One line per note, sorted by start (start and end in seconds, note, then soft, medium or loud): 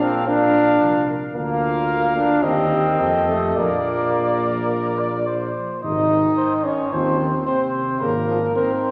0.00 0.82 A#1 soft
0.00 0.29 C4 medium
0.00 0.27 F4 soft
0.00 0.25 A#4 medium
0.00 0.25 F5 soft
0.27 1.08 D4 medium
0.27 1.06 F4 soft
0.27 1.06 A#4 medium
0.27 1.06 F5 soft
0.81 1.16 C2 soft
1.34 2.40 D2 medium
1.34 2.12 A#3 medium
1.34 2.44 F4 medium
1.34 2.40 A#4 medium
1.34 2.45 F5 medium
2.17 2.46 D4 medium
2.43 3.01 D#2 soft
2.43 3.28 C4 medium
2.43 2.99 G4 soft
2.43 2.99 A#4 soft
2.43 2.99 D#5 soft
2.99 3.56 F2 soft
2.99 3.58 G4 soft
2.99 3.56 A4 soft
2.99 3.58 D#5 soft
3.28 3.59 A3 medium
3.56 5.51 A#1 soft
3.56 5.27 A#3 medium
3.56 5.55 F4 soft
3.56 4.08 A#4 soft
3.56 5.55 D5 soft
4.15 5.00 A#4 medium
4.99 5.28 D5 soft
5.27 5.83 C5 soft
5.83 6.29 G#1 soft
5.83 6.12 C3 soft
5.83 6.67 D#4 medium
5.83 6.66 D#5 medium
6.10 6.94 D#3 medium
6.37 6.53 C5 soft
6.65 6.93 C#4 medium
6.65 6.94 C#5 soft
6.92 7.38 D#2 soft
6.92 7.19 F3 medium
6.92 7.46 C4 medium
6.92 7.46 C5 medium
7.20 7.32 D#3 soft
7.46 8.00 C3 soft
7.46 8.00 C4 medium
7.46 7.62 C5 soft
7.46 8.02 C5 medium
8.01 8.47 G#1 medium
8.01 8.13 C#3 soft
8.01 8.55 A#3 medium
8.01 8.55 A#4 medium
8.28 8.41 F3 medium
8.56 8.91 D#3 medium
8.56 8.91 C4 medium
8.56 8.72 A#4 soft
8.56 8.91 C5 medium